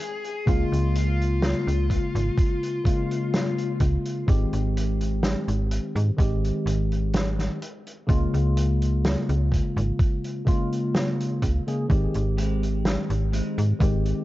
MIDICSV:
0, 0, Header, 1, 6, 480
1, 0, Start_track
1, 0, Tempo, 952381
1, 238, Time_signature, 4, 2, 24, 8
1, 7178, End_track
2, 0, Start_track
2, 0, Title_t, "Lead electric guitar"
2, 0, Program_c, 0, 29
2, 0, Note_on_c, 0, 68, 88
2, 248, Note_on_c, 0, 65, 93
2, 256, Note_off_c, 0, 68, 0
2, 483, Note_off_c, 0, 65, 0
2, 489, Note_on_c, 0, 65, 83
2, 1904, Note_off_c, 0, 65, 0
2, 7178, End_track
3, 0, Start_track
3, 0, Title_t, "Clean electric guitar"
3, 0, Program_c, 1, 27
3, 6236, Note_on_c, 1, 56, 87
3, 6237, Note_on_c, 1, 60, 75
3, 6240, Note_on_c, 1, 67, 83
3, 6362, Note_off_c, 1, 56, 0
3, 6363, Note_off_c, 1, 60, 0
3, 6364, Note_off_c, 1, 67, 0
3, 6716, Note_on_c, 1, 56, 88
3, 6719, Note_on_c, 1, 60, 73
3, 6720, Note_on_c, 1, 63, 74
3, 6843, Note_off_c, 1, 56, 0
3, 6844, Note_off_c, 1, 60, 0
3, 6844, Note_off_c, 1, 63, 0
3, 7178, End_track
4, 0, Start_track
4, 0, Title_t, "Tine electric piano"
4, 0, Program_c, 2, 4
4, 231, Note_on_c, 2, 49, 91
4, 236, Note_on_c, 2, 56, 85
4, 240, Note_on_c, 2, 58, 88
4, 246, Note_on_c, 2, 65, 106
4, 1407, Note_off_c, 2, 49, 0
4, 1410, Note_off_c, 2, 56, 0
4, 1412, Note_off_c, 2, 58, 0
4, 1414, Note_off_c, 2, 65, 0
4, 1431, Note_on_c, 2, 49, 78
4, 1436, Note_on_c, 2, 56, 75
4, 1442, Note_on_c, 2, 58, 70
4, 1446, Note_on_c, 2, 65, 89
4, 2127, Note_off_c, 2, 49, 0
4, 2130, Note_off_c, 2, 56, 0
4, 2132, Note_off_c, 2, 58, 0
4, 2134, Note_off_c, 2, 65, 0
4, 2150, Note_on_c, 2, 51, 78
4, 2155, Note_on_c, 2, 56, 72
4, 2159, Note_on_c, 2, 60, 74
4, 2164, Note_on_c, 2, 67, 87
4, 3086, Note_off_c, 2, 51, 0
4, 3089, Note_off_c, 2, 56, 0
4, 3091, Note_off_c, 2, 60, 0
4, 3094, Note_off_c, 2, 67, 0
4, 3108, Note_on_c, 2, 51, 73
4, 3113, Note_on_c, 2, 56, 69
4, 3118, Note_on_c, 2, 60, 70
4, 3123, Note_on_c, 2, 67, 85
4, 3819, Note_off_c, 2, 51, 0
4, 3822, Note_off_c, 2, 56, 0
4, 3824, Note_off_c, 2, 60, 0
4, 3827, Note_off_c, 2, 67, 0
4, 4066, Note_on_c, 2, 49, 98
4, 4072, Note_on_c, 2, 56, 85
4, 4076, Note_on_c, 2, 58, 85
4, 4081, Note_on_c, 2, 65, 101
4, 5245, Note_off_c, 2, 49, 0
4, 5248, Note_off_c, 2, 56, 0
4, 5249, Note_off_c, 2, 58, 0
4, 5252, Note_off_c, 2, 65, 0
4, 5266, Note_on_c, 2, 49, 84
4, 5271, Note_on_c, 2, 56, 76
4, 5277, Note_on_c, 2, 58, 75
4, 5283, Note_on_c, 2, 65, 97
4, 5847, Note_off_c, 2, 49, 0
4, 5850, Note_off_c, 2, 56, 0
4, 5852, Note_off_c, 2, 58, 0
4, 5856, Note_off_c, 2, 65, 0
4, 5880, Note_on_c, 2, 49, 73
4, 5882, Note_on_c, 2, 56, 66
4, 5885, Note_on_c, 2, 58, 69
4, 5888, Note_on_c, 2, 68, 82
4, 5969, Note_off_c, 2, 49, 0
4, 5970, Note_off_c, 2, 56, 0
4, 5971, Note_off_c, 2, 58, 0
4, 5973, Note_off_c, 2, 68, 0
4, 5988, Note_on_c, 2, 51, 79
4, 5994, Note_on_c, 2, 56, 69
4, 6000, Note_on_c, 2, 60, 71
4, 6003, Note_on_c, 2, 67, 85
4, 6926, Note_off_c, 2, 51, 0
4, 6928, Note_off_c, 2, 56, 0
4, 6932, Note_off_c, 2, 60, 0
4, 6933, Note_off_c, 2, 67, 0
4, 6949, Note_on_c, 2, 51, 78
4, 6953, Note_on_c, 2, 56, 69
4, 6957, Note_on_c, 2, 60, 70
4, 6964, Note_on_c, 2, 67, 85
4, 7178, Note_off_c, 2, 51, 0
4, 7178, Note_off_c, 2, 56, 0
4, 7178, Note_off_c, 2, 60, 0
4, 7178, Note_off_c, 2, 67, 0
4, 7178, End_track
5, 0, Start_track
5, 0, Title_t, "FM bass"
5, 0, Program_c, 3, 39
5, 237, Note_on_c, 3, 37, 98
5, 323, Note_off_c, 3, 37, 0
5, 363, Note_on_c, 3, 37, 86
5, 779, Note_off_c, 3, 37, 0
5, 842, Note_on_c, 3, 37, 86
5, 1002, Note_off_c, 3, 37, 0
5, 1083, Note_on_c, 3, 32, 99
5, 1161, Note_off_c, 3, 32, 0
5, 1916, Note_on_c, 3, 37, 94
5, 2002, Note_off_c, 3, 37, 0
5, 2156, Note_on_c, 3, 32, 99
5, 2242, Note_off_c, 3, 32, 0
5, 2283, Note_on_c, 3, 32, 87
5, 2699, Note_off_c, 3, 32, 0
5, 2762, Note_on_c, 3, 32, 85
5, 2922, Note_off_c, 3, 32, 0
5, 3001, Note_on_c, 3, 44, 104
5, 3080, Note_off_c, 3, 44, 0
5, 3118, Note_on_c, 3, 32, 106
5, 3284, Note_off_c, 3, 32, 0
5, 3355, Note_on_c, 3, 32, 89
5, 3778, Note_off_c, 3, 32, 0
5, 4076, Note_on_c, 3, 37, 101
5, 4162, Note_off_c, 3, 37, 0
5, 4202, Note_on_c, 3, 37, 90
5, 4618, Note_off_c, 3, 37, 0
5, 4683, Note_on_c, 3, 37, 87
5, 4842, Note_off_c, 3, 37, 0
5, 4921, Note_on_c, 3, 32, 102
5, 5000, Note_off_c, 3, 32, 0
5, 5757, Note_on_c, 3, 37, 90
5, 5843, Note_off_c, 3, 37, 0
5, 5997, Note_on_c, 3, 32, 99
5, 6082, Note_off_c, 3, 32, 0
5, 6124, Note_on_c, 3, 32, 88
5, 6539, Note_off_c, 3, 32, 0
5, 6602, Note_on_c, 3, 32, 87
5, 6762, Note_off_c, 3, 32, 0
5, 6844, Note_on_c, 3, 44, 99
5, 6921, Note_off_c, 3, 44, 0
5, 6958, Note_on_c, 3, 32, 113
5, 7124, Note_off_c, 3, 32, 0
5, 7178, End_track
6, 0, Start_track
6, 0, Title_t, "Drums"
6, 122, Note_on_c, 9, 42, 48
6, 173, Note_off_c, 9, 42, 0
6, 238, Note_on_c, 9, 36, 122
6, 240, Note_on_c, 9, 42, 75
6, 288, Note_off_c, 9, 36, 0
6, 290, Note_off_c, 9, 42, 0
6, 369, Note_on_c, 9, 42, 62
6, 420, Note_off_c, 9, 42, 0
6, 481, Note_on_c, 9, 42, 99
6, 531, Note_off_c, 9, 42, 0
6, 612, Note_on_c, 9, 42, 52
6, 662, Note_off_c, 9, 42, 0
6, 718, Note_on_c, 9, 38, 104
6, 720, Note_on_c, 9, 42, 76
6, 768, Note_off_c, 9, 38, 0
6, 771, Note_off_c, 9, 42, 0
6, 847, Note_on_c, 9, 42, 57
6, 898, Note_off_c, 9, 42, 0
6, 957, Note_on_c, 9, 36, 65
6, 961, Note_on_c, 9, 42, 102
6, 1008, Note_off_c, 9, 36, 0
6, 1011, Note_off_c, 9, 42, 0
6, 1086, Note_on_c, 9, 42, 52
6, 1136, Note_off_c, 9, 42, 0
6, 1198, Note_on_c, 9, 36, 123
6, 1200, Note_on_c, 9, 42, 81
6, 1248, Note_off_c, 9, 36, 0
6, 1250, Note_off_c, 9, 42, 0
6, 1326, Note_on_c, 9, 42, 55
6, 1376, Note_off_c, 9, 42, 0
6, 1438, Note_on_c, 9, 36, 106
6, 1443, Note_on_c, 9, 42, 100
6, 1488, Note_off_c, 9, 36, 0
6, 1493, Note_off_c, 9, 42, 0
6, 1568, Note_on_c, 9, 42, 59
6, 1618, Note_off_c, 9, 42, 0
6, 1681, Note_on_c, 9, 42, 76
6, 1683, Note_on_c, 9, 38, 106
6, 1731, Note_off_c, 9, 42, 0
6, 1733, Note_off_c, 9, 38, 0
6, 1805, Note_on_c, 9, 42, 57
6, 1856, Note_off_c, 9, 42, 0
6, 1915, Note_on_c, 9, 42, 88
6, 1917, Note_on_c, 9, 36, 65
6, 1965, Note_off_c, 9, 42, 0
6, 1968, Note_off_c, 9, 36, 0
6, 2043, Note_on_c, 9, 42, 57
6, 2093, Note_off_c, 9, 42, 0
6, 2157, Note_on_c, 9, 36, 125
6, 2160, Note_on_c, 9, 42, 80
6, 2208, Note_off_c, 9, 36, 0
6, 2210, Note_off_c, 9, 42, 0
6, 2282, Note_on_c, 9, 42, 54
6, 2332, Note_off_c, 9, 42, 0
6, 2403, Note_on_c, 9, 42, 93
6, 2454, Note_off_c, 9, 42, 0
6, 2523, Note_on_c, 9, 42, 57
6, 2574, Note_off_c, 9, 42, 0
6, 2636, Note_on_c, 9, 38, 115
6, 2641, Note_on_c, 9, 42, 77
6, 2687, Note_off_c, 9, 38, 0
6, 2691, Note_off_c, 9, 42, 0
6, 2763, Note_on_c, 9, 42, 60
6, 2813, Note_off_c, 9, 42, 0
6, 2878, Note_on_c, 9, 42, 92
6, 2928, Note_off_c, 9, 42, 0
6, 3005, Note_on_c, 9, 42, 50
6, 3055, Note_off_c, 9, 42, 0
6, 3117, Note_on_c, 9, 36, 125
6, 3123, Note_on_c, 9, 42, 79
6, 3167, Note_off_c, 9, 36, 0
6, 3173, Note_off_c, 9, 42, 0
6, 3247, Note_on_c, 9, 42, 51
6, 3298, Note_off_c, 9, 42, 0
6, 3361, Note_on_c, 9, 42, 97
6, 3411, Note_off_c, 9, 42, 0
6, 3486, Note_on_c, 9, 42, 50
6, 3536, Note_off_c, 9, 42, 0
6, 3596, Note_on_c, 9, 42, 72
6, 3601, Note_on_c, 9, 38, 111
6, 3646, Note_off_c, 9, 42, 0
6, 3651, Note_off_c, 9, 38, 0
6, 3725, Note_on_c, 9, 38, 34
6, 3727, Note_on_c, 9, 42, 52
6, 3775, Note_off_c, 9, 38, 0
6, 3777, Note_off_c, 9, 42, 0
6, 3840, Note_on_c, 9, 42, 88
6, 3891, Note_off_c, 9, 42, 0
6, 3965, Note_on_c, 9, 42, 53
6, 4015, Note_off_c, 9, 42, 0
6, 4077, Note_on_c, 9, 36, 120
6, 4079, Note_on_c, 9, 42, 75
6, 4127, Note_off_c, 9, 36, 0
6, 4129, Note_off_c, 9, 42, 0
6, 4204, Note_on_c, 9, 42, 55
6, 4255, Note_off_c, 9, 42, 0
6, 4319, Note_on_c, 9, 42, 101
6, 4369, Note_off_c, 9, 42, 0
6, 4443, Note_on_c, 9, 42, 57
6, 4494, Note_off_c, 9, 42, 0
6, 4558, Note_on_c, 9, 42, 65
6, 4560, Note_on_c, 9, 38, 127
6, 4609, Note_off_c, 9, 42, 0
6, 4611, Note_off_c, 9, 38, 0
6, 4682, Note_on_c, 9, 42, 53
6, 4733, Note_off_c, 9, 42, 0
6, 4797, Note_on_c, 9, 36, 66
6, 4805, Note_on_c, 9, 42, 94
6, 4847, Note_off_c, 9, 36, 0
6, 4855, Note_off_c, 9, 42, 0
6, 4925, Note_on_c, 9, 42, 52
6, 4976, Note_off_c, 9, 42, 0
6, 5037, Note_on_c, 9, 36, 126
6, 5039, Note_on_c, 9, 42, 74
6, 5087, Note_off_c, 9, 36, 0
6, 5089, Note_off_c, 9, 42, 0
6, 5162, Note_on_c, 9, 42, 51
6, 5212, Note_off_c, 9, 42, 0
6, 5276, Note_on_c, 9, 36, 110
6, 5279, Note_on_c, 9, 42, 85
6, 5327, Note_off_c, 9, 36, 0
6, 5329, Note_off_c, 9, 42, 0
6, 5405, Note_on_c, 9, 42, 50
6, 5455, Note_off_c, 9, 42, 0
6, 5517, Note_on_c, 9, 38, 113
6, 5521, Note_on_c, 9, 42, 72
6, 5567, Note_off_c, 9, 38, 0
6, 5571, Note_off_c, 9, 42, 0
6, 5647, Note_on_c, 9, 42, 58
6, 5697, Note_off_c, 9, 42, 0
6, 5756, Note_on_c, 9, 42, 86
6, 5757, Note_on_c, 9, 36, 63
6, 5807, Note_off_c, 9, 36, 0
6, 5807, Note_off_c, 9, 42, 0
6, 5885, Note_on_c, 9, 42, 50
6, 5935, Note_off_c, 9, 42, 0
6, 5997, Note_on_c, 9, 36, 118
6, 6002, Note_on_c, 9, 42, 65
6, 6047, Note_off_c, 9, 36, 0
6, 6052, Note_off_c, 9, 42, 0
6, 6119, Note_on_c, 9, 42, 49
6, 6170, Note_off_c, 9, 42, 0
6, 6240, Note_on_c, 9, 42, 93
6, 6290, Note_off_c, 9, 42, 0
6, 6365, Note_on_c, 9, 42, 57
6, 6416, Note_off_c, 9, 42, 0
6, 6478, Note_on_c, 9, 38, 111
6, 6481, Note_on_c, 9, 42, 73
6, 6528, Note_off_c, 9, 38, 0
6, 6532, Note_off_c, 9, 42, 0
6, 6603, Note_on_c, 9, 42, 53
6, 6653, Note_off_c, 9, 42, 0
6, 6719, Note_on_c, 9, 42, 85
6, 6769, Note_off_c, 9, 42, 0
6, 6846, Note_on_c, 9, 42, 53
6, 6896, Note_off_c, 9, 42, 0
6, 6957, Note_on_c, 9, 36, 115
6, 6960, Note_on_c, 9, 42, 81
6, 7008, Note_off_c, 9, 36, 0
6, 7010, Note_off_c, 9, 42, 0
6, 7083, Note_on_c, 9, 42, 46
6, 7133, Note_off_c, 9, 42, 0
6, 7178, End_track
0, 0, End_of_file